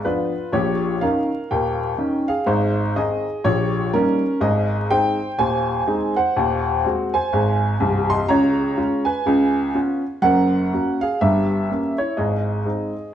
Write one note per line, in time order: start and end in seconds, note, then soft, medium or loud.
0.05 0.32 F3 soft
0.05 0.32 B3 soft
0.05 0.32 D4 medium
0.05 0.50 F4 medium
0.05 0.53 B4 medium
0.53 0.95 A#1 medium
0.53 0.94 A#2 medium
0.53 0.99 G4 medium
0.53 1.02 C#5 medium
1.01 1.29 D#3 soft
1.01 1.29 C#4 soft
1.01 1.29 D#4 soft
1.01 1.47 A#4 medium
1.01 1.50 F5 medium
1.51 1.92 D#1 medium
1.51 1.92 D#2 medium
1.51 2.25 A#4 medium
1.51 2.28 G5 medium
1.98 2.25 D#3 soft
1.98 2.26 C#4 medium
1.98 2.25 D#4 medium
2.28 2.47 G#4 medium
2.28 2.48 F5 medium
2.46 2.88 G#1 medium
2.46 2.88 G#2 medium
2.46 2.93 D#4 medium
2.46 2.96 C5 medium
2.96 3.23 D#3 medium
2.96 3.24 C4 soft
2.96 3.24 D#4 medium
2.96 3.42 G#4 medium
2.96 3.45 D#5 medium
3.44 3.86 A#1 medium
3.44 3.86 A#2 medium
3.44 3.90 G4 medium
3.44 3.93 C#5 medium
3.93 4.20 G3 medium
3.93 4.20 A#3 medium
3.93 4.39 C#4 medium
3.93 4.21 D#4 medium
3.93 4.42 A#4 medium
4.41 4.82 G#1 medium
4.41 4.82 G#2 medium
4.41 4.87 G#4 medium
4.41 4.90 D#5 medium
4.90 5.17 G#3 medium
4.90 5.18 C4 medium
4.90 5.18 D#4 medium
4.90 5.36 C5 medium
4.90 5.39 G5 loud
5.38 5.80 D#1 medium
5.38 5.80 D#2 medium
5.38 6.13 C5 medium
5.38 6.16 G#5 medium
5.87 6.14 G#3 medium
5.87 6.14 C4 medium
5.87 6.14 D#4 medium
6.16 7.09 C5 medium
6.16 7.13 F#5 medium
6.36 6.77 D#1 medium
6.36 6.77 D#2 medium
6.85 7.11 G#3 soft
6.85 7.11 C4 medium
6.85 7.12 F#4 medium
7.14 8.07 C5 medium
7.14 8.10 G#5 medium
7.33 7.74 G#1 medium
7.33 7.74 G#2 medium
7.80 8.20 C1 medium
7.80 8.19 C2 medium
8.10 8.29 D#5 medium
8.10 8.29 C6 loud
8.28 8.70 C#2 medium
8.28 8.70 C#3 medium
8.28 9.03 C#5 medium
8.28 9.06 A#5 loud
8.77 9.04 G#3 soft
8.77 9.04 C#4 medium
8.77 9.04 F4 medium
9.05 9.70 B4 medium
9.05 9.74 G#5 medium
9.26 9.67 C#2 loud
9.26 9.67 C#3 medium
9.74 10.01 B3 soft
9.74 10.01 C#4 medium
9.74 10.02 F4 medium
10.22 10.63 F#1 medium
10.22 10.64 F#2 medium
10.22 10.96 A#4 medium
10.22 11.00 F#5 loud
10.73 10.99 A#3 soft
10.73 10.99 C#4 soft
10.73 10.99 F#4 medium
11.01 11.20 G#4 medium
11.01 11.20 F5 loud
11.21 11.62 G1 medium
11.21 11.62 G2 medium
11.21 11.94 G4 medium
11.21 11.98 E5 medium
11.70 11.96 A#3 soft
11.70 11.97 C#4 soft
11.98 12.16 E4 medium
11.98 12.17 C#5 medium
12.17 12.58 G#1 medium
12.17 12.58 G#2 medium
12.17 13.14 G#4 medium
12.17 13.14 D#5 medium
12.65 12.92 G#3 soft
12.65 12.92 C4 soft
12.65 12.93 D#4 soft